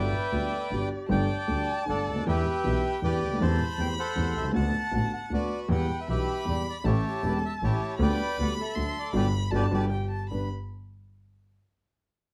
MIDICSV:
0, 0, Header, 1, 6, 480
1, 0, Start_track
1, 0, Key_signature, 1, "major"
1, 0, Tempo, 383387
1, 1383, Time_signature, 3, 2, 24, 8
1, 15447, End_track
2, 0, Start_track
2, 0, Title_t, "Violin"
2, 0, Program_c, 0, 40
2, 0, Note_on_c, 0, 76, 87
2, 890, Note_on_c, 0, 74, 67
2, 909, Note_off_c, 0, 76, 0
2, 1357, Note_off_c, 0, 74, 0
2, 1364, Note_on_c, 0, 81, 93
2, 2838, Note_on_c, 0, 79, 90
2, 2857, Note_off_c, 0, 81, 0
2, 4264, Note_off_c, 0, 79, 0
2, 4272, Note_on_c, 0, 83, 110
2, 5639, Note_off_c, 0, 83, 0
2, 5684, Note_on_c, 0, 81, 107
2, 6838, Note_off_c, 0, 81, 0
2, 7133, Note_on_c, 0, 79, 91
2, 7582, Note_off_c, 0, 79, 0
2, 7633, Note_on_c, 0, 83, 108
2, 8574, Note_on_c, 0, 81, 105
2, 8593, Note_off_c, 0, 83, 0
2, 9992, Note_off_c, 0, 81, 0
2, 9999, Note_on_c, 0, 83, 120
2, 10954, Note_on_c, 0, 84, 110
2, 10973, Note_off_c, 0, 83, 0
2, 11426, Note_off_c, 0, 84, 0
2, 11434, Note_on_c, 0, 83, 109
2, 11905, Note_on_c, 0, 81, 101
2, 11924, Note_off_c, 0, 83, 0
2, 12374, Note_off_c, 0, 81, 0
2, 12382, Note_on_c, 0, 79, 90
2, 12621, Note_off_c, 0, 79, 0
2, 12649, Note_on_c, 0, 81, 83
2, 12877, Note_off_c, 0, 81, 0
2, 12889, Note_on_c, 0, 83, 72
2, 13118, Note_off_c, 0, 83, 0
2, 15447, End_track
3, 0, Start_track
3, 0, Title_t, "Bandoneon"
3, 0, Program_c, 1, 23
3, 0, Note_on_c, 1, 71, 70
3, 0, Note_on_c, 1, 74, 69
3, 0, Note_on_c, 1, 79, 99
3, 1107, Note_off_c, 1, 79, 0
3, 1112, Note_off_c, 1, 74, 0
3, 1116, Note_off_c, 1, 71, 0
3, 1389, Note_on_c, 1, 79, 99
3, 1400, Note_on_c, 1, 74, 70
3, 2305, Note_off_c, 1, 79, 0
3, 2311, Note_off_c, 1, 74, 0
3, 2369, Note_on_c, 1, 78, 105
3, 2373, Note_on_c, 1, 69, 69
3, 2374, Note_on_c, 1, 74, 74
3, 2810, Note_off_c, 1, 78, 0
3, 2812, Note_off_c, 1, 69, 0
3, 2813, Note_off_c, 1, 74, 0
3, 2861, Note_on_c, 1, 71, 73
3, 2863, Note_on_c, 1, 67, 80
3, 2864, Note_on_c, 1, 76, 109
3, 3755, Note_off_c, 1, 71, 0
3, 3756, Note_off_c, 1, 67, 0
3, 3757, Note_off_c, 1, 76, 0
3, 3806, Note_on_c, 1, 74, 104
3, 3813, Note_on_c, 1, 71, 70
3, 3818, Note_on_c, 1, 67, 67
3, 4245, Note_off_c, 1, 71, 0
3, 4248, Note_off_c, 1, 67, 0
3, 4279, Note_on_c, 1, 81, 113
3, 4284, Note_on_c, 1, 72, 74
3, 4288, Note_off_c, 1, 74, 0
3, 4758, Note_off_c, 1, 81, 0
3, 4759, Note_on_c, 1, 79, 101
3, 4860, Note_off_c, 1, 79, 0
3, 4934, Note_off_c, 1, 72, 0
3, 4999, Note_on_c, 1, 78, 114
3, 5001, Note_on_c, 1, 72, 74
3, 5005, Note_on_c, 1, 69, 83
3, 5429, Note_off_c, 1, 78, 0
3, 5474, Note_on_c, 1, 76, 102
3, 5575, Note_off_c, 1, 76, 0
3, 5651, Note_off_c, 1, 72, 0
3, 5653, Note_off_c, 1, 69, 0
3, 5701, Note_on_c, 1, 81, 104
3, 5705, Note_on_c, 1, 78, 76
3, 6172, Note_off_c, 1, 78, 0
3, 6187, Note_off_c, 1, 81, 0
3, 6190, Note_on_c, 1, 78, 98
3, 6412, Note_off_c, 1, 78, 0
3, 6431, Note_on_c, 1, 78, 92
3, 6667, Note_off_c, 1, 78, 0
3, 6683, Note_on_c, 1, 71, 67
3, 6685, Note_on_c, 1, 66, 67
3, 6685, Note_on_c, 1, 74, 91
3, 7005, Note_off_c, 1, 74, 0
3, 7116, Note_off_c, 1, 71, 0
3, 7118, Note_off_c, 1, 66, 0
3, 7154, Note_on_c, 1, 78, 98
3, 7159, Note_on_c, 1, 71, 62
3, 7481, Note_off_c, 1, 78, 0
3, 7522, Note_on_c, 1, 76, 91
3, 7617, Note_off_c, 1, 71, 0
3, 7619, Note_off_c, 1, 76, 0
3, 7632, Note_on_c, 1, 67, 64
3, 7636, Note_on_c, 1, 71, 69
3, 7637, Note_on_c, 1, 76, 96
3, 8076, Note_off_c, 1, 76, 0
3, 8135, Note_on_c, 1, 74, 84
3, 8297, Note_off_c, 1, 67, 0
3, 8299, Note_off_c, 1, 71, 0
3, 8342, Note_off_c, 1, 74, 0
3, 8379, Note_on_c, 1, 74, 101
3, 8478, Note_off_c, 1, 74, 0
3, 8585, Note_on_c, 1, 67, 71
3, 8588, Note_on_c, 1, 64, 66
3, 8599, Note_on_c, 1, 73, 90
3, 9037, Note_off_c, 1, 73, 0
3, 9094, Note_on_c, 1, 69, 89
3, 9130, Note_on_c, 1, 71, 70
3, 9133, Note_off_c, 1, 69, 0
3, 9185, Note_off_c, 1, 71, 0
3, 9217, Note_on_c, 1, 69, 86
3, 9252, Note_off_c, 1, 67, 0
3, 9254, Note_off_c, 1, 64, 0
3, 9311, Note_off_c, 1, 69, 0
3, 9335, Note_on_c, 1, 76, 95
3, 9435, Note_off_c, 1, 76, 0
3, 9555, Note_on_c, 1, 64, 67
3, 9564, Note_on_c, 1, 67, 69
3, 9566, Note_on_c, 1, 73, 95
3, 9991, Note_off_c, 1, 64, 0
3, 9996, Note_off_c, 1, 67, 0
3, 9997, Note_off_c, 1, 73, 0
3, 10037, Note_on_c, 1, 71, 80
3, 10037, Note_on_c, 1, 74, 69
3, 10051, Note_on_c, 1, 79, 104
3, 10477, Note_off_c, 1, 79, 0
3, 10543, Note_on_c, 1, 78, 104
3, 10639, Note_off_c, 1, 78, 0
3, 10691, Note_off_c, 1, 71, 0
3, 10691, Note_off_c, 1, 74, 0
3, 10772, Note_on_c, 1, 69, 76
3, 10787, Note_on_c, 1, 76, 96
3, 11246, Note_off_c, 1, 76, 0
3, 11257, Note_on_c, 1, 74, 94
3, 11415, Note_off_c, 1, 69, 0
3, 11449, Note_off_c, 1, 74, 0
3, 11467, Note_on_c, 1, 67, 90
3, 11468, Note_on_c, 1, 74, 92
3, 11475, Note_on_c, 1, 71, 95
3, 11611, Note_off_c, 1, 67, 0
3, 11611, Note_off_c, 1, 74, 0
3, 11615, Note_off_c, 1, 71, 0
3, 11954, Note_on_c, 1, 71, 101
3, 11956, Note_on_c, 1, 67, 99
3, 11964, Note_on_c, 1, 74, 95
3, 12097, Note_off_c, 1, 71, 0
3, 12098, Note_off_c, 1, 67, 0
3, 12103, Note_off_c, 1, 74, 0
3, 12192, Note_on_c, 1, 74, 89
3, 12194, Note_on_c, 1, 71, 89
3, 12196, Note_on_c, 1, 67, 95
3, 12337, Note_off_c, 1, 74, 0
3, 12338, Note_off_c, 1, 71, 0
3, 12340, Note_off_c, 1, 67, 0
3, 15447, End_track
4, 0, Start_track
4, 0, Title_t, "Flute"
4, 0, Program_c, 2, 73
4, 178, Note_on_c, 2, 71, 94
4, 624, Note_off_c, 2, 71, 0
4, 645, Note_on_c, 2, 69, 73
4, 876, Note_off_c, 2, 69, 0
4, 896, Note_on_c, 2, 67, 65
4, 1349, Note_off_c, 2, 67, 0
4, 11906, Note_on_c, 2, 74, 95
4, 12157, Note_on_c, 2, 71, 87
4, 12176, Note_off_c, 2, 74, 0
4, 12395, Note_on_c, 2, 67, 77
4, 12413, Note_off_c, 2, 71, 0
4, 12889, Note_off_c, 2, 67, 0
4, 12908, Note_on_c, 2, 71, 75
4, 13128, Note_off_c, 2, 71, 0
4, 15447, End_track
5, 0, Start_track
5, 0, Title_t, "Upright piano"
5, 0, Program_c, 3, 0
5, 0, Note_on_c, 3, 31, 78
5, 0, Note_on_c, 3, 43, 81
5, 0, Note_on_c, 3, 50, 67
5, 0, Note_on_c, 3, 55, 59
5, 0, Note_on_c, 3, 59, 63
5, 0, Note_on_c, 3, 66, 72
5, 136, Note_off_c, 3, 31, 0
5, 137, Note_off_c, 3, 59, 0
5, 138, Note_off_c, 3, 43, 0
5, 138, Note_off_c, 3, 50, 0
5, 138, Note_off_c, 3, 55, 0
5, 139, Note_off_c, 3, 66, 0
5, 396, Note_on_c, 3, 50, 51
5, 401, Note_on_c, 3, 38, 50
5, 403, Note_on_c, 3, 55, 39
5, 404, Note_on_c, 3, 59, 43
5, 407, Note_on_c, 3, 66, 51
5, 610, Note_off_c, 3, 38, 0
5, 611, Note_off_c, 3, 55, 0
5, 612, Note_off_c, 3, 50, 0
5, 612, Note_off_c, 3, 59, 0
5, 613, Note_off_c, 3, 66, 0
5, 884, Note_on_c, 3, 50, 40
5, 886, Note_on_c, 3, 31, 46
5, 887, Note_on_c, 3, 55, 39
5, 891, Note_on_c, 3, 59, 36
5, 892, Note_on_c, 3, 43, 43
5, 897, Note_on_c, 3, 66, 43
5, 1095, Note_off_c, 3, 50, 0
5, 1096, Note_off_c, 3, 31, 0
5, 1097, Note_off_c, 3, 55, 0
5, 1098, Note_off_c, 3, 59, 0
5, 1099, Note_off_c, 3, 43, 0
5, 1101, Note_off_c, 3, 66, 0
5, 1354, Note_on_c, 3, 50, 76
5, 1359, Note_on_c, 3, 57, 67
5, 1361, Note_on_c, 3, 31, 91
5, 1363, Note_on_c, 3, 55, 66
5, 1363, Note_on_c, 3, 67, 87
5, 1366, Note_on_c, 3, 43, 93
5, 1573, Note_off_c, 3, 50, 0
5, 1575, Note_off_c, 3, 57, 0
5, 1576, Note_off_c, 3, 31, 0
5, 1578, Note_off_c, 3, 55, 0
5, 1578, Note_off_c, 3, 67, 0
5, 1579, Note_off_c, 3, 43, 0
5, 1839, Note_on_c, 3, 55, 45
5, 1844, Note_on_c, 3, 50, 61
5, 1848, Note_on_c, 3, 57, 47
5, 1849, Note_on_c, 3, 38, 59
5, 1853, Note_on_c, 3, 67, 54
5, 2057, Note_off_c, 3, 55, 0
5, 2061, Note_off_c, 3, 57, 0
5, 2062, Note_off_c, 3, 38, 0
5, 2062, Note_off_c, 3, 50, 0
5, 2064, Note_off_c, 3, 67, 0
5, 2319, Note_on_c, 3, 50, 48
5, 2326, Note_on_c, 3, 55, 41
5, 2328, Note_on_c, 3, 31, 53
5, 2329, Note_on_c, 3, 57, 45
5, 2334, Note_on_c, 3, 43, 58
5, 2337, Note_on_c, 3, 67, 48
5, 2539, Note_off_c, 3, 50, 0
5, 2542, Note_off_c, 3, 55, 0
5, 2543, Note_off_c, 3, 31, 0
5, 2544, Note_off_c, 3, 57, 0
5, 2546, Note_off_c, 3, 43, 0
5, 2548, Note_off_c, 3, 67, 0
5, 2623, Note_on_c, 3, 37, 55
5, 2695, Note_on_c, 3, 38, 61
5, 2699, Note_off_c, 3, 37, 0
5, 2756, Note_on_c, 3, 39, 72
5, 2765, Note_off_c, 3, 38, 0
5, 2825, Note_off_c, 3, 39, 0
5, 2836, Note_on_c, 3, 59, 66
5, 2837, Note_on_c, 3, 52, 88
5, 2837, Note_on_c, 3, 67, 89
5, 2840, Note_on_c, 3, 40, 89
5, 2845, Note_on_c, 3, 62, 66
5, 3037, Note_off_c, 3, 59, 0
5, 3037, Note_off_c, 3, 67, 0
5, 3039, Note_off_c, 3, 40, 0
5, 3039, Note_off_c, 3, 52, 0
5, 3041, Note_off_c, 3, 62, 0
5, 3303, Note_on_c, 3, 47, 58
5, 3303, Note_on_c, 3, 52, 52
5, 3304, Note_on_c, 3, 59, 46
5, 3305, Note_on_c, 3, 35, 59
5, 3305, Note_on_c, 3, 62, 50
5, 3309, Note_on_c, 3, 67, 57
5, 3509, Note_off_c, 3, 47, 0
5, 3509, Note_off_c, 3, 52, 0
5, 3510, Note_off_c, 3, 35, 0
5, 3510, Note_off_c, 3, 59, 0
5, 3510, Note_off_c, 3, 62, 0
5, 3512, Note_off_c, 3, 67, 0
5, 3778, Note_on_c, 3, 40, 53
5, 3783, Note_on_c, 3, 52, 55
5, 3783, Note_on_c, 3, 59, 44
5, 3785, Note_on_c, 3, 62, 43
5, 3787, Note_on_c, 3, 67, 52
5, 3985, Note_off_c, 3, 40, 0
5, 3988, Note_off_c, 3, 52, 0
5, 3988, Note_off_c, 3, 59, 0
5, 3989, Note_off_c, 3, 62, 0
5, 3990, Note_off_c, 3, 67, 0
5, 4086, Note_on_c, 3, 37, 54
5, 4147, Note_off_c, 3, 37, 0
5, 4167, Note_on_c, 3, 38, 67
5, 4203, Note_on_c, 3, 39, 78
5, 4217, Note_off_c, 3, 38, 0
5, 4265, Note_off_c, 3, 39, 0
5, 4268, Note_on_c, 3, 52, 94
5, 4269, Note_on_c, 3, 57, 74
5, 4271, Note_on_c, 3, 67, 85
5, 4276, Note_on_c, 3, 60, 72
5, 4277, Note_on_c, 3, 40, 93
5, 4466, Note_off_c, 3, 52, 0
5, 4466, Note_off_c, 3, 57, 0
5, 4467, Note_off_c, 3, 67, 0
5, 4470, Note_off_c, 3, 40, 0
5, 4470, Note_off_c, 3, 60, 0
5, 4728, Note_on_c, 3, 60, 46
5, 4730, Note_on_c, 3, 52, 57
5, 4732, Note_on_c, 3, 57, 49
5, 4733, Note_on_c, 3, 67, 57
5, 4736, Note_on_c, 3, 40, 63
5, 4932, Note_off_c, 3, 60, 0
5, 4933, Note_off_c, 3, 52, 0
5, 4933, Note_off_c, 3, 57, 0
5, 4934, Note_off_c, 3, 67, 0
5, 4936, Note_off_c, 3, 40, 0
5, 5203, Note_on_c, 3, 52, 57
5, 5207, Note_on_c, 3, 60, 44
5, 5209, Note_on_c, 3, 57, 44
5, 5213, Note_on_c, 3, 40, 55
5, 5218, Note_on_c, 3, 67, 53
5, 5407, Note_off_c, 3, 52, 0
5, 5409, Note_off_c, 3, 60, 0
5, 5410, Note_off_c, 3, 57, 0
5, 5412, Note_off_c, 3, 40, 0
5, 5414, Note_off_c, 3, 67, 0
5, 5508, Note_on_c, 3, 35, 57
5, 5562, Note_on_c, 3, 36, 60
5, 5567, Note_off_c, 3, 35, 0
5, 5618, Note_on_c, 3, 37, 80
5, 5624, Note_off_c, 3, 36, 0
5, 5665, Note_on_c, 3, 50, 86
5, 5669, Note_on_c, 3, 38, 89
5, 5669, Note_on_c, 3, 57, 74
5, 5680, Note_on_c, 3, 59, 65
5, 5680, Note_on_c, 3, 66, 88
5, 5682, Note_off_c, 3, 37, 0
5, 5878, Note_off_c, 3, 38, 0
5, 5878, Note_off_c, 3, 57, 0
5, 5879, Note_off_c, 3, 50, 0
5, 5884, Note_off_c, 3, 59, 0
5, 5884, Note_off_c, 3, 66, 0
5, 6154, Note_on_c, 3, 33, 60
5, 6160, Note_on_c, 3, 45, 59
5, 6160, Note_on_c, 3, 59, 44
5, 6162, Note_on_c, 3, 50, 53
5, 6162, Note_on_c, 3, 57, 47
5, 6172, Note_on_c, 3, 66, 57
5, 6362, Note_off_c, 3, 33, 0
5, 6365, Note_off_c, 3, 45, 0
5, 6365, Note_off_c, 3, 59, 0
5, 6366, Note_off_c, 3, 50, 0
5, 6366, Note_off_c, 3, 57, 0
5, 6371, Note_off_c, 3, 66, 0
5, 6633, Note_on_c, 3, 50, 54
5, 6639, Note_on_c, 3, 38, 49
5, 6639, Note_on_c, 3, 57, 38
5, 6640, Note_on_c, 3, 66, 51
5, 6646, Note_on_c, 3, 59, 41
5, 6847, Note_off_c, 3, 38, 0
5, 6847, Note_off_c, 3, 50, 0
5, 6847, Note_off_c, 3, 57, 0
5, 6847, Note_off_c, 3, 66, 0
5, 6850, Note_off_c, 3, 59, 0
5, 7113, Note_on_c, 3, 55, 62
5, 7113, Note_on_c, 3, 67, 83
5, 7115, Note_on_c, 3, 40, 88
5, 7115, Note_on_c, 3, 59, 66
5, 7117, Note_on_c, 3, 52, 87
5, 7325, Note_off_c, 3, 55, 0
5, 7325, Note_off_c, 3, 67, 0
5, 7326, Note_off_c, 3, 40, 0
5, 7326, Note_off_c, 3, 59, 0
5, 7328, Note_off_c, 3, 52, 0
5, 7612, Note_on_c, 3, 52, 50
5, 7615, Note_on_c, 3, 55, 44
5, 7618, Note_on_c, 3, 67, 54
5, 7620, Note_on_c, 3, 47, 59
5, 7623, Note_on_c, 3, 35, 62
5, 7624, Note_on_c, 3, 59, 44
5, 7817, Note_off_c, 3, 52, 0
5, 7818, Note_off_c, 3, 55, 0
5, 7819, Note_off_c, 3, 67, 0
5, 7820, Note_off_c, 3, 47, 0
5, 7822, Note_off_c, 3, 35, 0
5, 7823, Note_off_c, 3, 59, 0
5, 8072, Note_on_c, 3, 52, 49
5, 8077, Note_on_c, 3, 55, 43
5, 8079, Note_on_c, 3, 59, 42
5, 8081, Note_on_c, 3, 40, 55
5, 8083, Note_on_c, 3, 67, 49
5, 8290, Note_off_c, 3, 55, 0
5, 8291, Note_off_c, 3, 59, 0
5, 8292, Note_off_c, 3, 40, 0
5, 8293, Note_off_c, 3, 67, 0
5, 8294, Note_off_c, 3, 52, 0
5, 8562, Note_on_c, 3, 57, 72
5, 8566, Note_on_c, 3, 61, 70
5, 8567, Note_on_c, 3, 67, 86
5, 8568, Note_on_c, 3, 45, 88
5, 8570, Note_on_c, 3, 33, 86
5, 8570, Note_on_c, 3, 52, 74
5, 8772, Note_off_c, 3, 57, 0
5, 8774, Note_off_c, 3, 61, 0
5, 8775, Note_off_c, 3, 45, 0
5, 8775, Note_off_c, 3, 67, 0
5, 8776, Note_off_c, 3, 33, 0
5, 8776, Note_off_c, 3, 52, 0
5, 9049, Note_on_c, 3, 52, 49
5, 9051, Note_on_c, 3, 40, 62
5, 9051, Note_on_c, 3, 57, 46
5, 9054, Note_on_c, 3, 61, 47
5, 9054, Note_on_c, 3, 67, 57
5, 9056, Note_on_c, 3, 28, 60
5, 9256, Note_off_c, 3, 52, 0
5, 9257, Note_off_c, 3, 40, 0
5, 9257, Note_off_c, 3, 57, 0
5, 9258, Note_off_c, 3, 61, 0
5, 9258, Note_off_c, 3, 67, 0
5, 9259, Note_off_c, 3, 28, 0
5, 9538, Note_on_c, 3, 52, 48
5, 9542, Note_on_c, 3, 57, 45
5, 9544, Note_on_c, 3, 45, 59
5, 9549, Note_on_c, 3, 61, 45
5, 9551, Note_on_c, 3, 33, 55
5, 9554, Note_on_c, 3, 67, 50
5, 9740, Note_off_c, 3, 52, 0
5, 9742, Note_off_c, 3, 57, 0
5, 9743, Note_off_c, 3, 45, 0
5, 9745, Note_off_c, 3, 61, 0
5, 9746, Note_off_c, 3, 33, 0
5, 9748, Note_off_c, 3, 67, 0
5, 9998, Note_on_c, 3, 55, 68
5, 10003, Note_on_c, 3, 67, 90
5, 10004, Note_on_c, 3, 38, 101
5, 10004, Note_on_c, 3, 50, 98
5, 10004, Note_on_c, 3, 59, 77
5, 10207, Note_off_c, 3, 55, 0
5, 10209, Note_off_c, 3, 38, 0
5, 10209, Note_off_c, 3, 67, 0
5, 10210, Note_off_c, 3, 59, 0
5, 10211, Note_off_c, 3, 50, 0
5, 10498, Note_on_c, 3, 50, 59
5, 10499, Note_on_c, 3, 59, 50
5, 10503, Note_on_c, 3, 55, 49
5, 10509, Note_on_c, 3, 38, 65
5, 10513, Note_on_c, 3, 67, 61
5, 10695, Note_off_c, 3, 59, 0
5, 10696, Note_off_c, 3, 50, 0
5, 10698, Note_off_c, 3, 55, 0
5, 10701, Note_off_c, 3, 38, 0
5, 10703, Note_off_c, 3, 67, 0
5, 10962, Note_on_c, 3, 50, 55
5, 10964, Note_on_c, 3, 38, 52
5, 10969, Note_on_c, 3, 54, 45
5, 10972, Note_on_c, 3, 57, 42
5, 10972, Note_on_c, 3, 66, 52
5, 11164, Note_off_c, 3, 38, 0
5, 11167, Note_off_c, 3, 54, 0
5, 11168, Note_off_c, 3, 57, 0
5, 11168, Note_off_c, 3, 66, 0
5, 11170, Note_off_c, 3, 50, 0
5, 11430, Note_on_c, 3, 50, 103
5, 11432, Note_on_c, 3, 47, 98
5, 11432, Note_on_c, 3, 55, 99
5, 11588, Note_off_c, 3, 50, 0
5, 11589, Note_off_c, 3, 47, 0
5, 11589, Note_off_c, 3, 55, 0
5, 11912, Note_on_c, 3, 55, 99
5, 11916, Note_on_c, 3, 47, 95
5, 11923, Note_on_c, 3, 50, 94
5, 12072, Note_off_c, 3, 55, 0
5, 12074, Note_off_c, 3, 47, 0
5, 12078, Note_off_c, 3, 50, 0
5, 12159, Note_on_c, 3, 50, 94
5, 12165, Note_on_c, 3, 47, 94
5, 12169, Note_on_c, 3, 55, 101
5, 12318, Note_off_c, 3, 50, 0
5, 12321, Note_off_c, 3, 47, 0
5, 12324, Note_off_c, 3, 55, 0
5, 12904, Note_on_c, 3, 43, 59
5, 12907, Note_on_c, 3, 59, 50
5, 12909, Note_on_c, 3, 62, 52
5, 12918, Note_on_c, 3, 67, 58
5, 13103, Note_off_c, 3, 43, 0
5, 13104, Note_off_c, 3, 59, 0
5, 13106, Note_off_c, 3, 62, 0
5, 13110, Note_off_c, 3, 67, 0
5, 15447, End_track
6, 0, Start_track
6, 0, Title_t, "Double bass"
6, 0, Program_c, 4, 43
6, 0, Note_on_c, 4, 31, 96
6, 130, Note_off_c, 4, 31, 0
6, 409, Note_on_c, 4, 38, 52
6, 614, Note_off_c, 4, 38, 0
6, 897, Note_on_c, 4, 31, 52
6, 1101, Note_off_c, 4, 31, 0
6, 1378, Note_on_c, 4, 31, 96
6, 1585, Note_off_c, 4, 31, 0
6, 1874, Note_on_c, 4, 38, 58
6, 2075, Note_off_c, 4, 38, 0
6, 2358, Note_on_c, 4, 31, 56
6, 2558, Note_off_c, 4, 31, 0
6, 2598, Note_on_c, 4, 38, 55
6, 2837, Note_off_c, 4, 38, 0
6, 2845, Note_on_c, 4, 40, 100
6, 3041, Note_off_c, 4, 40, 0
6, 3320, Note_on_c, 4, 35, 66
6, 3518, Note_off_c, 4, 35, 0
6, 3802, Note_on_c, 4, 40, 60
6, 3997, Note_off_c, 4, 40, 0
6, 4039, Note_on_c, 4, 38, 60
6, 4264, Note_off_c, 4, 38, 0
6, 4271, Note_on_c, 4, 40, 113
6, 4467, Note_off_c, 4, 40, 0
6, 4744, Note_on_c, 4, 40, 62
6, 4939, Note_off_c, 4, 40, 0
6, 5214, Note_on_c, 4, 40, 59
6, 5412, Note_off_c, 4, 40, 0
6, 5452, Note_on_c, 4, 36, 58
6, 5670, Note_off_c, 4, 36, 0
6, 5677, Note_on_c, 4, 38, 100
6, 5882, Note_off_c, 4, 38, 0
6, 6167, Note_on_c, 4, 33, 60
6, 6368, Note_off_c, 4, 33, 0
6, 6656, Note_on_c, 4, 38, 58
6, 6855, Note_off_c, 4, 38, 0
6, 7132, Note_on_c, 4, 40, 94
6, 7334, Note_off_c, 4, 40, 0
6, 7623, Note_on_c, 4, 35, 57
6, 7822, Note_off_c, 4, 35, 0
6, 8107, Note_on_c, 4, 40, 59
6, 8305, Note_off_c, 4, 40, 0
6, 8573, Note_on_c, 4, 33, 98
6, 8778, Note_off_c, 4, 33, 0
6, 9066, Note_on_c, 4, 28, 57
6, 9264, Note_off_c, 4, 28, 0
6, 9545, Note_on_c, 4, 33, 67
6, 9743, Note_off_c, 4, 33, 0
6, 10015, Note_on_c, 4, 38, 107
6, 10215, Note_off_c, 4, 38, 0
6, 10502, Note_on_c, 4, 38, 64
6, 10697, Note_off_c, 4, 38, 0
6, 10984, Note_on_c, 4, 38, 59
6, 11175, Note_off_c, 4, 38, 0
6, 11450, Note_on_c, 4, 31, 102
6, 11625, Note_off_c, 4, 31, 0
6, 11936, Note_on_c, 4, 31, 94
6, 12110, Note_off_c, 4, 31, 0
6, 12181, Note_on_c, 4, 31, 92
6, 12355, Note_off_c, 4, 31, 0
6, 12918, Note_on_c, 4, 31, 57
6, 13110, Note_off_c, 4, 31, 0
6, 15447, End_track
0, 0, End_of_file